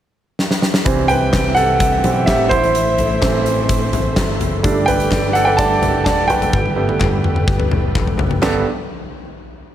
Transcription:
0.39 snare
0.51 snare
0.62 snare
0.74 snare
0.85 picked electric bass C2, string section C3 C4 G4 E5, grand piano E3 G3 C4, kick, closed hi-hat
1.08 grand piano B4 G5, closed hi-hat, floor tom
1.33 picked electric bass C2, kick, snare, clap, closed hi-hat
1.55 grand piano A4 F#5, closed hi-hat
1.80 kick, closed hi-hat
2.03 picked electric bass B1, grand piano E3 G3 C4, closed hi-hat, floor tom
2.26 picked electric bass A1, grand piano G4 E5, kick, snare, clap, closed hi-hat
2.49 picked electric bass A1, string section A3 A4 C5, grand piano E4 C5, kick, closed hi-hat, floor tom
2.64 closed hi-hat
2.75 closed hi-hat
2.98 closed hi-hat, floor tom
3.21 picked electric bass A1, grand piano E3 A3 C4, kick, snare, clap, closed hi-hat
3.46 closed hi-hat
3.69 kick, closed hi-hat
3.93 picked electric bass A1, closed hi-hat, floor tom
4.16 picked electric bass G1, kick, snare, clap, closed hi-hat
4.41 picked electric bass F#1, closed hi-hat, floor tom
4.63 picked electric bass G1, grand piano G3 A3 D4, string section G3 G4 D5, kick, closed hi-hat
4.86 grand piano B4 G5, closed hi-hat, floor tom
5.00 closed hi-hat
5.11 picked electric bass G1, kick, snare, clap, closed hi-hat
5.33 grand piano A4 F#5, closed hi-hat
5.45 grand piano B4 G5
5.57 grand piano G3 A3 D4 D5 A5, kick, closed hi-hat
5.82 picked electric bass F#1, closed hi-hat, floor tom
6.04 picked electric bass E1, grand piano D5 A5, kick, snare, clap, closed hi-hat
6.28 picked electric bass F#1, grand piano B4 G5, closed hi-hat, floor tom
6.42 closed hi-hat, floor tom
6.53 picked electric bass G1, string section B4, kick, high tom
6.66 high tom
6.76 grand piano G3 A3 B3
6.89 high tom
7.01 picked electric bass G1, kick, clap, mid tom
7.24 mid tom
7.36 mid tom
7.48 kick
7.60 mid tom
7.71 picked electric bass F#1, mid tom
7.95 picked electric bass E1, kick, clap, floor tom
8.07 floor tom
8.19 picked electric bass F#1, floor tom
8.31 floor tom
8.42 picked electric bass G1, grand piano G2 B3 D4 G4 A4, string section G3 G4 A4 B4, snare, clap, floor tom, crash

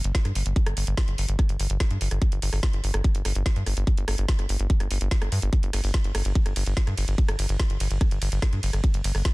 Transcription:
0.04 analog synth bass G1, closed hi-hat
0.15 kick, snare, closed hi-hat
0.25 analog synth bass G2, cross-stick, closed hi-hat
0.35 analog synth bass G1, open hi-hat
0.46 analog synth bass G1, closed hi-hat
0.56 kick, closed hi-hat
0.66 analog synth bass G1, cross-stick, closed hi-hat
0.77 analog synth bass G1, open hi-hat
0.87 analog synth bass G1, closed hi-hat
0.97 kick, cross-stick, snare, closed hi-hat
1.08 analog synth bass G1, closed hi-hat
1.18 analog synth bass G1, open hi-hat
1.29 analog synth bass G1, closed hi-hat
1.39 kick, cross-stick, closed hi-hat
1.49 analog synth bass G1, closed hi-hat
1.60 analog synth bass G1, open hi-hat
1.70 analog synth bass G1, closed hi-hat
1.80 kick, cross-stick, snare, closed hi-hat
1.91 analog synth bass G2, closed hi-hat
2.01 analog synth bass G1, open hi-hat
2.11 analog synth bass G1, cross-stick, closed hi-hat
2.22 kick, closed hi-hat
2.32 analog synth bass G1, closed hi-hat
2.42 analog synth bass G1, open hi-hat
2.53 analog synth bass G1, cross-stick, open hi-hat
2.63 kick, snare, closed hi-hat
2.73 analog synth bass G1, closed hi-hat
2.84 analog synth bass G1, open hi-hat
2.94 analog synth bass G1, cross-stick, closed hi-hat
3.04 kick, closed hi-hat
3.15 analog synth bass G1, closed hi-hat
3.25 analog synth bass G1, cross-stick, open hi-hat
3.35 analog synth bass G1, closed hi-hat
3.46 kick, snare, closed hi-hat
3.56 analog synth bass G2, closed hi-hat
3.66 analog synth bass G1, cross-stick, open hi-hat
3.77 analog synth bass G1, closed hi-hat
3.87 kick, closed hi-hat
3.97 analog synth bass G1, closed hi-hat
4.08 analog synth bass G1, cross-stick, open hi-hat
4.18 analog synth bass G1, closed hi-hat
4.29 kick, snare, closed hi-hat
4.39 analog synth bass G1, cross-stick, closed hi-hat
4.49 analog synth bass G1, open hi-hat
4.60 analog synth bass G1, closed hi-hat
4.70 kick, closed hi-hat
4.80 analog synth bass G1, cross-stick, closed hi-hat
4.91 analog synth bass G1, open hi-hat
5.01 analog synth bass G1, closed hi-hat
5.11 kick, snare, closed hi-hat
5.22 analog synth bass G1, cross-stick, closed hi-hat
5.32 analog synth bass G2, open hi-hat
5.42 analog synth bass G1, closed hi-hat
5.53 kick, closed hi-hat
5.63 analog synth bass G1, closed hi-hat
5.73 analog synth bass G1, cross-stick, open hi-hat, ride
5.84 analog synth bass G1, open hi-hat
5.94 kick, snare, closed hi-hat
6.04 analog synth bass G1, closed hi-hat
6.15 analog synth bass G1, cross-stick, open hi-hat, ride
6.25 analog synth bass G1, closed hi-hat
6.35 kick, closed hi-hat
6.46 analog synth bass G1, cross-stick, closed hi-hat
6.56 analog synth bass G1, open hi-hat, ride
6.66 analog synth bass G1, closed hi-hat
6.77 kick, snare, closed hi-hat
6.87 analog synth bass G2, cross-stick, closed hi-hat
6.97 analog synth bass G1, open hi-hat, ride
7.08 analog synth bass G1, closed hi-hat
7.18 kick, closed hi-hat
7.29 analog synth bass G1, cross-stick, closed hi-hat
7.39 analog synth bass G1, open hi-hat, ride
7.49 analog synth bass G1, closed hi-hat
7.60 kick, cross-stick, snare, closed hi-hat
7.70 analog synth bass G1, closed hi-hat
7.80 analog synth bass G1, open hi-hat, ride
7.91 analog synth bass G1, closed hi-hat
8.01 kick, cross-stick, closed hi-hat
8.11 analog synth bass G1, closed hi-hat
8.22 analog synth bass G1, open hi-hat, ride
8.32 analog synth bass G1, closed hi-hat
8.42 kick, cross-stick, snare, closed hi-hat
8.53 analog synth bass G2, closed hi-hat
8.63 analog synth bass G1, open hi-hat, ride
8.73 analog synth bass G1, cross-stick, closed hi-hat
8.84 kick, closed hi-hat
8.94 analog synth bass G1, closed hi-hat
9.04 analog synth bass G1, open hi-hat, ride
9.15 analog synth bass G1, cross-stick, open hi-hat
9.25 kick, snare, closed hi-hat

